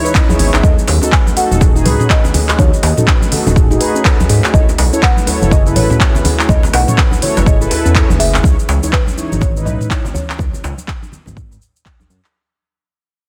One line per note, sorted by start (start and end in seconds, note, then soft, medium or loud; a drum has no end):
0.00 0.60 E3 medium
0.00 0.60 G#3 medium
0.00 0.12 D#4 medium
0.00 0.12 E4 medium
0.00 0.13 C#5 loud
0.00 0.60 C#5 medium
0.05 0.14 B4 loud
0.05 shaker medium
0.15 0.28 C#4 medium
0.15 0.26 D#4 medium
0.15 0.26 E4 medium
0.15 0.26 D#5 medium
0.15 kick loud
0.15 clap loud
0.15 djembe tone medium
0.15 shaker medium
0.29 0.50 D#4 medium
0.29 0.50 E4 medium
0.29 0.39 G#4 loud
0.29 0.50 C#5 medium
0.29 high conga loud
0.29 djembe bass medium
0.29 shaker medium
0.39 0.50 G#1 medium
0.39 0.53 B3 medium
0.39 open hi-hat medium
0.39 shaker loud
0.53 0.61 G#1 loud
0.53 0.62 D#4 medium
0.53 0.62 E4 medium
0.53 0.62 E5 loud
0.53 clap medium
0.53 djembe tone loud
0.53 shaker medium
0.63 0.74 D#2 loud
0.63 8.40 A3 medium
0.63 0.76 D#4 medium
0.63 0.76 F#4 medium
0.63 8.40 F#4 medium
0.63 0.76 A4 medium
0.63 1.14 D#5 loud
0.63 4.50 D#5 medium
0.63 kick loud
0.63 djembe tone medium
0.63 high conga loud
0.63 shaker medium
0.79 shaker medium
0.88 0.99 D#2 medium
0.88 open hi-hat medium
0.88 djembe slap loud
0.88 shaker medium
1.02 1.11 C#4 medium
1.02 1.11 D#4 medium
1.02 1.11 F#4 medium
1.02 1.11 A4 loud
1.02 djembe tone medium
1.02 shaker medium
1.12 1.25 B4 medium
1.12 1.35 G#5 loud
1.12 kick loud
1.12 clap medium
1.12 shaker soft
1.27 djembe tone medium
1.27 high conga medium
1.27 shaker medium
1.37 1.72 D#4 medium
1.37 1.72 F#4 medium
1.37 1.72 A4 medium
1.37 2.12 F#5 loud
1.37 open hi-hat medium
1.37 shaker loud
1.51 1.87 D#1 medium
1.51 high conga medium
1.51 shaker medium
1.61 1.74 G#4 medium
1.61 kick loud
1.61 djembe tone loud
1.61 low conga loud
1.61 shaker medium
1.75 1.81 D#4 loud
1.75 2.08 D#4 medium
1.75 2.08 F#4 medium
1.75 2.08 G#4 loud
1.75 shaker medium
1.85 1.96 C#2 medium
1.85 1.99 B4 loud
1.85 mid tom medium
1.85 open hi-hat medium
1.85 djembe tone medium
1.85 high conga loud
1.85 low conga medium
1.85 shaker medium
2.00 2.09 C#4 loud
2.00 mid tom loud
2.00 shaker medium
2.10 2.22 D#4 medium
2.10 2.22 F#4 medium
2.10 2.22 A4 loud
2.10 2.23 B4 medium
2.10 2.55 D#5 loud
2.10 kick loud
2.10 clap loud
2.10 shaker medium
2.24 djembe tone loud
2.24 low conga loud
2.24 shaker medium
2.34 2.48 G#4 medium
2.34 open hi-hat medium
2.34 high conga medium
2.34 djembe bass loud
2.34 low conga loud
2.34 shaker loud
2.49 clap medium
2.49 djembe tone medium
2.49 shaker medium
2.59 2.70 D#2 loud
2.59 2.71 D#4 medium
2.59 2.71 F#4 medium
2.59 2.71 A4 medium
2.59 2.84 C#5 loud
2.59 kick loud
2.59 high conga loud
2.59 djembe bass medium
2.59 shaker medium
2.74 low conga medium
2.74 shaker medium
2.83 2.94 D#2 medium
2.83 3.77 D#5 medium
2.83 open hi-hat medium
2.83 djembe slap loud
2.83 djembe tone medium
2.83 shaker medium
2.97 3.06 C#4 medium
2.97 3.06 D#4 medium
2.97 3.06 F#4 medium
2.97 3.06 A4 loud
2.97 mid tom medium
2.97 high conga medium
2.97 shaker medium
3.07 3.20 B4 medium
3.07 kick loud
3.07 clap loud
3.07 djembe tone medium
3.07 shaker soft
3.22 high conga medium
3.22 shaker medium
3.32 3.67 D#4 medium
3.32 3.67 F#4 medium
3.32 3.67 A4 medium
3.32 open hi-hat medium
3.32 low conga medium
3.32 shaker medium
3.46 3.76 D#1 medium
3.46 djembe tone medium
3.46 high conga medium
3.46 shaker medium
3.56 3.69 G#4 medium
3.56 kick loud
3.56 mid tom medium
3.56 shaker medium
3.70 3.76 D#4 loud
3.70 4.03 D#4 medium
3.70 4.03 F#4 medium
3.70 4.03 G#4 medium
3.70 djembe tone medium
3.70 shaker medium
3.81 3.94 B4 loud
3.81 open hi-hat medium
3.81 shaker medium
3.95 4.04 C#4 loud
3.95 shaker medium
4.05 4.17 D#4 medium
4.05 4.17 F#4 medium
4.05 4.17 A4 loud
4.05 4.18 B4 medium
4.05 kick loud
4.05 clap loud
4.05 djembe tone medium
4.05 shaker medium
4.20 high conga loud
4.20 djembe bass medium
4.20 shaker medium
4.29 4.40 G#2 medium
4.29 4.43 G#4 medium
4.29 open hi-hat medium
4.29 djembe tone medium
4.29 shaker medium
4.44 clap medium
4.44 shaker medium
4.54 4.65 B1 loud
4.54 8.40 E4 medium
4.54 4.66 E4 medium
4.54 4.66 A4 medium
4.54 8.40 B4 medium
4.54 4.66 C#5 medium
4.54 5.04 D#5 loud
4.54 kick loud
4.54 high conga loud
4.54 shaker medium
4.69 djembe tone medium
4.69 shaker medium
4.78 4.89 B1 medium
4.78 open hi-hat loud
4.78 djembe slap loud
4.78 shaker medium
4.93 5.02 C#4 medium
4.93 5.01 E4 medium
4.93 5.01 A4 medium
4.93 5.01 C#5 loud
4.93 djembe tone medium
4.93 shaker medium
5.03 5.16 B4 medium
5.03 5.53 F#5 loud
5.03 kick loud
5.03 clap loud
5.03 shaker soft
5.17 high conga medium
5.17 shaker medium
5.27 5.62 E4 medium
5.27 5.62 A4 medium
5.27 5.63 C#5 medium
5.27 open hi-hat medium
5.27 djembe tone medium
5.27 shaker medium
5.42 5.77 F#1 medium
5.42 high conga medium
5.42 shaker medium
5.51 5.64 G#4 medium
5.51 5.77 D#5 loud
5.51 kick loud
5.51 djembe tone medium
5.51 low conga loud
5.51 shaker medium
5.66 5.71 E4 loud
5.66 5.98 E4 medium
5.66 5.98 A4 medium
5.66 5.98 B4 medium
5.66 shaker soft
5.76 5.87 A1 medium
5.76 5.89 B4 loud
5.76 6.51 C#5 loud
5.76 mid tom medium
5.76 open hi-hat medium
5.76 high conga medium
5.76 low conga medium
5.76 shaker medium
5.90 5.99 C#4 loud
5.90 mid tom medium
5.90 djembe tone medium
5.90 shaker soft
6.00 6.12 E4 medium
6.00 6.12 A4 medium
6.00 6.12 C#5 loud
6.00 kick loud
6.00 clap loud
6.00 shaker medium
6.15 djembe tone medium
6.15 low conga loud
6.15 shaker medium
6.24 6.38 G#4 medium
6.24 open hi-hat loud
6.24 high conga medium
6.24 djembe bass medium
6.24 low conga loud
6.24 shaker medium
6.39 clap medium
6.39 shaker medium
6.48 6.60 B1 loud
6.48 6.61 E4 medium
6.48 6.61 A4 medium
6.48 6.61 C#5 medium
6.48 6.74 D#5 loud
6.48 kick loud
6.48 high conga loud
6.48 djembe tone medium
6.48 djembe bass medium
6.48 shaker medium
6.63 djembe slap medium
6.63 low conga medium
6.63 shaker medium
6.73 6.84 B1 medium
6.73 7.24 F#5 loud
6.73 open hi-hat loud
6.73 djembe slap loud
6.73 djembe tone medium
6.73 shaker medium
6.88 6.97 C#4 medium
6.88 6.96 E4 medium
6.88 6.96 A4 medium
6.88 6.96 C#5 loud
6.88 mid tom medium
6.88 high conga medium
6.88 shaker medium
6.98 7.11 B4 medium
6.98 kick loud
6.98 clap loud
6.98 shaker medium
7.11 high conga medium
7.11 djembe tone medium
7.11 shaker medium
7.22 7.58 E4 medium
7.22 7.58 A4 medium
7.22 7.58 C#5 medium
7.22 7.47 C#5 medium
7.22 open hi-hat loud
7.22 low conga medium
7.22 shaker medium
7.37 7.67 F#1 medium
7.37 djembe slap medium
7.37 djembe tone medium
7.37 high conga medium
7.37 shaker medium
7.46 7.60 G#4 medium
7.46 8.16 D#5 medium
7.46 kick loud
7.46 mid tom medium
7.46 shaker loud
7.61 7.66 E4 loud
7.61 7.93 E4 medium
7.61 7.93 A4 medium
7.61 7.93 B4 medium
7.61 shaker medium
7.71 7.84 B4 loud
7.71 open hi-hat loud
7.71 djembe tone loud
7.71 shaker medium
7.85 8.02 E2 medium
7.85 7.94 C#4 loud
7.85 shaker medium
7.95 8.07 E4 medium
7.95 8.07 A4 medium
7.95 8.08 B4 medium
7.95 8.07 C#5 loud
7.95 kick loud
7.95 clap loud
7.95 djembe tone medium
7.95 shaker medium
8.10 8.40 F#1 loud
8.10 high conga loud
8.10 djembe bass medium
8.10 shaker medium
8.20 8.33 G#4 medium
8.20 8.95 E5 loud
8.20 open hi-hat loud
8.20 shaker medium
8.34 clap medium
8.34 djembe tone medium
8.34 shaker medium
8.43 8.55 C#2 loud
8.43 12.30 E3 medium
8.43 12.30 G#3 medium
8.43 12.30 C#4 medium
8.43 8.56 D#4 medium
8.43 8.56 E4 medium
8.43 12.30 C#5 medium
8.43 8.56 C#5 medium
8.43 kick loud
8.43 djembe tone medium
8.43 high conga loud
8.43 shaker medium
8.59 shaker medium
8.69 8.79 C#2 medium
8.69 djembe slap loud
8.69 shaker medium
8.83 8.91 D#4 medium
8.83 8.91 E4 medium
8.83 8.91 C#5 loud
8.83 djembe tone medium
8.83 shaker medium
8.92 9.43 B4 loud
8.92 kick loud
8.92 clap loud
8.92 shaker soft
9.06 djembe tone medium
9.06 high conga medium
9.06 shaker medium
9.17 9.53 D#4 medium
9.17 9.53 E4 medium
9.17 9.53 C#5 medium
9.17 shaker medium
9.32 9.68 G#1 medium
9.32 high conga medium
9.32 shaker medium
9.41 9.52 C#5 medium
9.41 kick loud
9.41 djembe tone medium
9.41 low conga loud
9.41 shaker medium
9.56 9.88 D#4 medium
9.56 9.88 E4 medium
9.56 9.88 B4 medium
9.56 shaker medium
9.65 9.77 B1 medium
9.65 10.16 D#5 loud
9.65 mid tom medium
9.65 djembe tone medium
9.65 high conga medium
9.65 shaker medium
9.81 mid tom medium
9.81 shaker medium
9.90 10.03 D#4 medium
9.90 10.03 E4 medium
9.90 10.03 C#5 medium
9.90 kick loud
9.90 clap loud
9.90 shaker medium
10.05 djembe tone medium
10.05 low conga loud
10.05 shaker medium
10.14 11.81 C#5 medium
10.14 high conga medium
10.14 low conga loud
10.14 djembe bass medium
10.14 shaker medium
10.30 clap medium
10.30 djembe tone medium
10.30 shaker medium
10.39 10.50 C#2 loud
10.39 kick loud
10.39 high conga loud
10.39 djembe bass medium
10.39 shaker medium
10.53 low conga medium
10.53 shaker medium
10.64 10.74 C#2 medium
10.64 djembe slap loud
10.64 djembe tone medium
10.64 shaker medium
10.78 high conga medium
10.78 shaker medium
10.88 kick loud
10.88 clap loud
10.88 djembe tone medium
10.88 shaker soft
11.03 high conga medium
11.03 shaker medium
11.12 low conga medium
11.12 shaker medium
11.26 11.57 G#1 medium
11.26 djembe tone medium
11.26 high conga loud
11.26 shaker medium
11.37 kick loud
11.37 mid tom medium
11.37 shaker medium
11.51 djembe tone medium
11.51 shaker medium
11.62 shaker medium
11.76 shaker medium
11.85 kick loud
11.85 clap loud
11.85 djembe tone medium
11.85 shaker medium
12.00 high conga loud
12.00 djembe bass medium
12.00 shaker medium
12.10 12.21 F#2 medium
12.10 djembe tone medium
12.10 shaker loud
12.24 clap medium
12.24 shaker medium